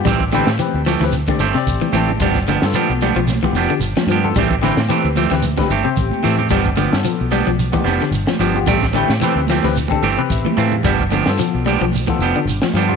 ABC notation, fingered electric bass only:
X:1
M:4/4
L:1/16
Q:"Swing 16ths" 1/4=111
K:Gmix
V:1 name="Fingered electric bass" clef=bass
A,,,3 A,, z D,,2 D,,2 z G,,, z A,,, z A,,,2 | G,,,3 G,, z B,,,2 B,,,2 z F,,, z G,,, z G,,2 | A,,,3 A,, z D,,2 D,,2 z G,,, z A,,, z A,,2 | G,,,3 G,, z B,,,2 B,,,2 z F,,, z G,,, z G,,,2 |
A,,,3 A,, z D,,2 D,,2 z G,,, z A,,, z A,,2 | G,,,3 G,, z B,,,2 B,,,2 z F,,, z G,,, z G,,2 |]